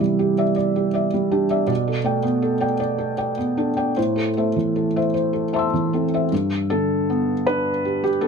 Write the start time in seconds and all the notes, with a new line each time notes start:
Already playing: C3 E3 G4 D5 E5
0.01 G3
0.19 G4
0.38 D5 E5
0.56 D5
0.76 G4
0.94 D5 E5
1.14 G3
1.32 D4 G4
1.50 D5 E5
1.67 B2 D5
1.88 A4
2.04 A3 D5 G5
2.23 B3
2.42 A4
2.60 D5 G5
2.80 D5
2.98 A4
3.18 D5 G5
3.37 B3
3.57 D4 A4
3.77 D5 G5
3.97 A2 C5
4.16 A4
4.37 A3 C5 E5
4.56 E3
4.76 A4
4.96 C5 E5
5.14 C5
5.33 A4
5.53 C5 E5 A5 C6
5.59 E6
5.74 E3
5.93 C4 A4
6.14 C5 E5
6.32 G2
6.70 D3 A4
7.10 B3
7.47 D4 B4
7.85 G4
8.04 G4
8.21 B3 A4